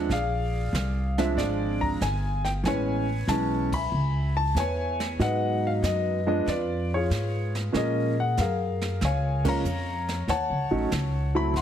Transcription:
0.09 0.72 A#1 medium
0.09 1.35 D5 medium
0.09 1.22 F5 medium
0.09 brush sweep soft
0.09 snare soft
0.13 1.35 G#4 medium
0.73 1.35 C2 medium
0.73 snare medium
0.73 hi-hat pedal soft
1.18 1.97 F3 medium
1.18 1.97 G#3 medium
1.18 1.98 C4 medium
1.18 1.98 D4 medium
1.18 1.37 E5 medium
1.18 snare soft
1.37 1.99 G#1 medium
1.37 2.62 F4 medium
1.37 2.62 G#4 medium
1.37 1.83 D5 medium
1.37 brush sweep soft
1.37 snare soft
1.81 2.00 A#5 medium
1.81 kick medium
2.01 2.63 G1 medium
2.01 2.43 G#5 medium
2.01 snare medium
2.01 hi-hat pedal medium
2.45 2.50 G5 medium
2.45 snare soft
2.64 3.26 A1 medium
2.64 3.05 E3 medium
2.64 3.05 G#3 soft
2.64 3.05 B3 soft
2.64 3.05 C#4 medium
2.64 3.31 G#5 medium
2.64 brush sweep soft
2.64 snare soft
2.68 3.90 B4 medium
2.68 3.90 C#5 medium
3.27 3.90 B1 medium
3.27 3.69 E3 medium
3.27 3.69 G#3 medium
3.27 3.69 B3 medium
3.27 3.69 C#4 medium
3.27 3.74 A5 medium
3.27 snare medium
3.27 hi-hat pedal medium
3.73 4.97 E5 medium
3.73 4.56 G#5 medium
3.73 4.33 B5 loud
3.73 kick medium
3.73 ride medium
3.92 4.54 C#2 medium
3.92 brush sweep soft
4.37 4.57 A5 medium
4.55 5.17 E2 medium
4.55 5.16 G#5 medium
4.55 snare medium
4.55 hi-hat pedal medium
4.59 5.17 B4 medium
4.59 5.17 C#5 medium
5.00 snare soft
5.19 5.81 G#2 medium
5.19 6.18 F#3 medium
5.19 6.18 G#3 medium
5.19 6.18 B3 medium
5.19 6.19 D#4 medium
5.19 5.66 F#5 medium
5.19 brush sweep soft
5.19 snare soft
5.24 6.45 B4 medium
5.24 5.83 D#5 medium
5.67 5.72 F5 medium
5.82 6.44 F#2 medium
5.82 6.27 D#5 medium
5.82 snare medium
5.82 hi-hat pedal medium
6.26 6.44 F3 medium
6.26 6.45 G#3 medium
6.26 6.45 B3 medium
6.26 6.45 D4 medium
6.26 6.48 D#5 medium
6.46 7.08 F2 medium
6.46 6.89 D5 medium
6.46 brush sweep soft
6.46 snare soft
6.51 6.95 F4 medium
6.51 7.72 B4 medium
6.94 7.73 F4 medium
6.94 7.72 G#4 soft
6.94 7.52 C#5 medium
7.10 7.72 G#2 medium
7.10 snare medium
7.10 hi-hat pedal soft
7.55 snare soft
7.72 8.36 A#2 medium
7.72 8.13 F3 medium
7.72 8.13 G#3 soft
7.72 8.13 A#3 medium
7.72 8.13 C#4 medium
7.72 brush sweep soft
7.72 snare soft
7.77 8.39 G#4 medium
7.77 8.39 A#4 medium
7.77 8.16 D#5 medium
8.20 8.39 F#5 medium
8.37 8.99 F#2 medium
8.37 9.62 G#4 soft
8.37 9.62 A#4 medium
8.37 9.03 F5 medium
8.37 snare medium
8.37 hi-hat pedal medium
8.81 snare soft
9.01 9.63 C#2 medium
9.01 9.47 C#5 medium
9.01 9.47 F5 medium
9.01 9.48 G#5 medium
9.01 brush sweep soft
9.01 snare soft
9.45 9.63 F3 medium
9.45 9.62 G#3 medium
9.45 9.63 A#3 medium
9.45 9.63 C#4 medium
9.45 10.26 C#5 medium
9.45 kick medium
9.45 ride medium
9.49 10.26 F5 medium
9.49 10.26 A#5 loud
9.64 10.26 F2 medium
9.64 hi-hat pedal soft
10.08 snare soft
10.28 10.51 D#2 medium
10.28 11.52 C#5 medium
10.28 11.52 F#5 medium
10.28 11.40 A5 medium
10.28 brush sweep soft
10.28 snare soft
10.50 10.70 C#2 medium
10.71 10.91 A1 medium
10.71 10.89 F#3 medium
10.71 10.89 A3 medium
10.71 10.89 C#4 medium
10.71 10.90 D#4 medium
10.91 11.53 C#2 medium
10.91 snare medium
10.91 hi-hat pedal medium
11.35 11.53 F#3 medium
11.35 11.53 A3 medium
11.35 11.53 C4 medium
11.35 11.53 E4 medium
11.35 11.54 B5 medium
11.54 11.62 D2 medium
11.54 11.62 E5 medium
11.54 11.62 F#5 medium
11.54 11.62 C6 medium
11.54 brush sweep soft
11.54 snare soft

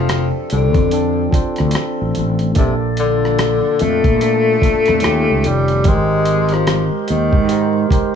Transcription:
0.00 0.31 F1 medium
0.00 0.27 F3 medium
0.00 0.89 F3 medium
0.00 2.52 F3 medium
0.00 0.91 C4 medium
0.00 2.52 C4 medium
0.00 0.93 D4 medium
0.00 2.52 D4 medium
0.00 2.58 G4 medium
0.00 0.94 A4 medium
0.00 4.98 A4 medium
0.09 cross-stick loud
0.09 closed hi-hat medium
0.50 0.75 C2 medium
0.50 1.30 D3 medium
0.50 closed hi-hat medium
0.74 1.27 F2 medium
0.74 kick medium
0.74 closed hi-hat soft
0.89 1.26 F3 medium
0.89 1.27 C4 medium
0.89 1.28 D4 medium
0.89 closed hi-hat medium
0.94 1.29 A4 medium
1.31 2.39 F3 medium
1.31 2.40 C4 medium
1.31 2.41 D4 medium
1.31 muted fretless electric bass stroke soft
1.31 kick medium
1.31 closed hi-hat medium
1.35 2.42 C5 medium
1.56 1.73 D2 medium
1.56 cross-stick soft
1.56 closed hi-hat soft
1.71 closed hi-hat medium
1.75 cross-stick loud
2.01 2.15 A1 medium
2.15 2.53 A1 medium
2.15 closed hi-hat medium
2.39 closed hi-hat soft
2.54 3.60 A#1 medium
2.54 3.96 A#2 medium
2.54 5.00 A#2 medium
2.54 2.74 C3 medium
2.54 3.97 A#3 medium
2.54 3.97 D4 medium
2.54 5.82 F4 medium
2.54 5.00 D5 medium
2.54 kick loud
2.54 closed hi-hat medium
2.58 3.98 A4 medium
2.97 3.83 D3 medium
2.97 closed hi-hat medium
3.25 cross-stick soft
3.39 cross-stick loud
3.39 closed hi-hat medium
3.79 4.03 F2 medium
3.79 5.48 A3 loud
3.79 closed hi-hat medium
4.04 4.56 A#2 medium
4.04 kick medium
4.04 closed hi-hat soft
4.19 4.56 A#2 medium
4.19 4.56 F3 medium
4.19 4.57 D4 medium
4.19 closed hi-hat medium
4.23 4.58 A4 medium
4.61 5.02 A#2 medium
4.61 5.03 A3 medium
4.61 5.04 D4 medium
4.61 muted fretless electric bass stroke soft
4.61 kick medium
4.61 closed hi-hat medium
4.65 5.05 A4 medium
4.86 5.02 F2 medium
4.86 cross-stick soft
4.86 closed hi-hat soft
5.00 5.73 D#3 medium
5.00 5.84 D#3 medium
5.00 5.74 C#4 medium
5.00 5.84 C#4 medium
5.00 5.75 F4 medium
5.00 5.84 G4 medium
5.00 closed hi-hat medium
5.04 5.26 D#2 medium
5.04 5.76 G4 medium
5.04 cross-stick loud
5.30 5.43 C#2 medium
5.44 5.82 F1 medium
5.44 5.89 G3 medium
5.44 closed hi-hat medium
5.68 closed hi-hat soft
5.84 6.89 G#1 medium
5.84 7.25 G#3 medium
5.84 8.15 G#3 medium
5.84 6.55 G#3 loud
5.84 7.26 G4 medium
5.84 8.15 G4 medium
5.84 8.15 A#4 medium
5.84 7.27 A#4 medium
5.84 8.15 C5 medium
5.84 kick loud
5.84 closed hi-hat medium
5.88 7.27 C5 medium
6.25 closed hi-hat medium
6.49 closed hi-hat soft
6.53 6.85 F3 medium
6.53 cross-stick soft
6.67 cross-stick loud
6.67 closed hi-hat medium
7.08 7.32 D#2 medium
7.08 7.87 D#3 medium
7.08 closed hi-hat medium
7.33 7.85 G#2 medium
7.33 kick medium
7.48 7.85 G#3 medium
7.48 7.85 G4 medium
7.48 7.86 A#4 medium
7.48 closed hi-hat medium
7.53 7.87 C5 medium
7.89 8.15 G#3 medium
7.89 8.15 G4 medium
7.89 8.15 A#4 medium
7.89 muted fretless electric bass stroke soft
7.89 kick medium
7.89 closed hi-hat medium
7.94 8.15 C5 medium

